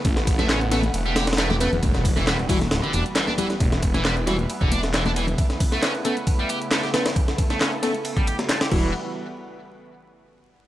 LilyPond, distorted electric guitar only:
\new Staff \with { instrumentName = "Distorted electric guitar" } { \time 4/4 \key e \dorian \tempo 4 = 135 r8. a16 cis'16 r16 a16 r8 g16 g'16 r16 a16 g'16 a16 r16 | r8. e16 g16 r16 e16 r8 d16 d'16 r16 e16 d'16 e16 r16 | r8. e16 g16 r16 e16 r8 d16 d'16 r16 e16 d'16 e16 r16 | r8. a16 cis'16 r16 a16 r8 g16 g'16 r16 a16 g'16 a16 r16 |
r8. a16 cis'16 r16 a16 r8 g16 g'16 r16 a16 g'16 e8 | r1 | }